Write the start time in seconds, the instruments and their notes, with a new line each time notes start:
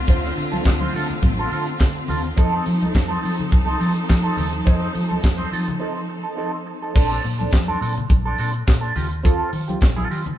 Already playing: string section D3 A3 C4 F4
0.07 fingered electric bass D2, clean electric guitar C4 F4 C5, kick, closed hi-hat, muted conga
0.24 snare
0.36 fingered electric bass D3, muted clean electric guitar stroke, open hi-hat
0.51 clean electric guitar C4 F4 A4, closed hi-hat, high conga
0.64 fingered electric bass D2, muted clean electric guitar stroke, kick, snare, clap, closed hi-hat, muted conga
0.80 clean electric guitar C4 F4 C5, high conga
0.94 fingered electric bass D3, clean electric guitar C4 F4 A4, open hi-hat, muted conga
1.10 muted clean electric guitar stroke, closed hi-hat, low conga
1.22 fingered electric bass A1, muted clean electric guitar stroke, kick, closed hi-hat, muted conga, high conga
1.39 clean electric guitar C4 F4 A4
1.52 fingered electric bass D3, clean electric guitar C4 F4 A4, open hi-hat
1.66 muted clean electric guitar stroke, closed hi-hat
1.79 fingered electric bass D3, muted clean electric guitar stroke, kick, snare, clap, closed hi-hat
1.96 muted clean electric guitar stroke
2.08 fingered electric bass D#2, clean electric guitar C4 F4 A4, open hi-hat, low conga
2.24 muted clean electric guitar stroke, closed hi-hat
2.36 fingered electric bass F2, string section F3 D#4 A4, clean electric guitar C4 D#4 A4, kick, closed hi-hat, tambourine, muted conga
2.66 fingered electric bass F3, muted clean electric guitar stroke, open hi-hat, tambourine
2.81 clean electric guitar C4 D#4 A4, closed hi-hat, high conga
2.94 fingered electric bass F2, muted clean electric guitar stroke, kick, snare, clap, closed hi-hat, tambourine, muted conga
3.08 clean electric guitar C4 D#4 A4, high conga
3.21 fingered electric bass F3, clean electric guitar C4 D#4 A4, open hi-hat, tambourine, muted conga
3.37 muted clean electric guitar stroke, closed hi-hat, low conga
3.51 fingered electric bass C2, muted clean electric guitar stroke, kick, closed hi-hat, high conga
3.66 clean electric guitar C4 D#4 A4
3.79 fingered electric bass F3, clean electric guitar C4 D#4 A4, open hi-hat, tambourine, muted conga
3.95 muted clean electric guitar stroke, closed hi-hat
4.08 fingered electric bass F3, muted clean electric guitar stroke, kick, snare, clap, closed hi-hat, tambourine
4.23 clean electric guitar C4 D#4 A4
4.37 fingered electric bass D#2, clean electric guitar C4 D#4 A4, open hi-hat, tambourine, muted conga, low conga
4.53 muted clean electric guitar stroke, closed hi-hat
4.65 fingered electric bass F2, clean electric guitar C4 D#4 C5, kick, closed hi-hat, tambourine
4.93 fingered electric bass F3, muted clean electric guitar stroke, open hi-hat, tambourine, muted conga
5.09 clean electric guitar C4 D#4 A4, closed hi-hat, high conga
5.22 fingered electric bass F2, muted clean electric guitar stroke, kick, snare, clap, closed hi-hat, tambourine
5.37 clean electric guitar C4 D#4 C5, high conga
5.51 fingered electric bass F3, clean electric guitar C4 D#4 A4, open hi-hat, tambourine, muted conga
5.66 muted clean electric guitar stroke, closed hi-hat, low conga
5.80 clean electric guitar C4 D#4 A4
5.95 muted clean electric guitar stroke
6.09 muted clean electric guitar stroke
6.23 clean electric guitar C4 D#4 A4
6.37 clean electric guitar C4 D#4 A4
6.54 muted clean electric guitar stroke
6.66 muted clean electric guitar stroke
6.82 clean electric guitar C4 D#4 A4
6.95 fingered electric bass A#1, clean electric guitar C4 D4 A4, kick, crash, tambourine, muted conga
7.12 snare
7.24 fingered electric bass A#2, muted clean electric guitar stroke, open hi-hat, tambourine, muted conga
7.39 clean electric guitar C4 D4 A4, closed hi-hat, high conga
7.51 fingered electric bass F2, kick, snare, clap, closed hi-hat, tambourine, muted conga
7.67 clean electric guitar C4 D4 A4, high conga
7.81 fingered electric bass A#2, clean electric guitar C4 D4 A4, open hi-hat, tambourine
7.97 closed hi-hat, low conga
8.10 fingered electric bass A#1, muted clean electric guitar stroke, kick, closed hi-hat, tambourine, high conga
8.26 clean electric guitar C4 D4 A4
8.38 fingered electric bass A#2, clean electric guitar C4 D4 A4, open hi-hat, tambourine
8.53 muted clean electric guitar stroke, closed hi-hat
8.67 fingered electric bass A#2, muted clean electric guitar stroke, kick, snare, clap, closed hi-hat, tambourine
8.81 clean electric guitar C4 D4 A4
8.95 fingered electric bass D#2, clean electric guitar C4 F4 G4, open hi-hat, tambourine, low conga
9.10 muted clean electric guitar stroke, closed hi-hat
9.23 clean electric guitar C4 F4 A4, kick, closed hi-hat, tambourine, muted conga
9.53 fingered electric bass D#3, muted clean electric guitar stroke, open hi-hat, tambourine, muted conga
9.68 clean electric guitar C4 F4 G4, closed hi-hat, high conga
9.81 fingered electric bass A#1, kick, snare, clap, closed hi-hat, tambourine, muted conga
9.96 clean electric guitar C4 F4 A4, high conga
10.09 fingered electric bass D#3, clean electric guitar C4 F4 G4, open hi-hat, tambourine
10.24 muted clean electric guitar stroke, closed hi-hat, low conga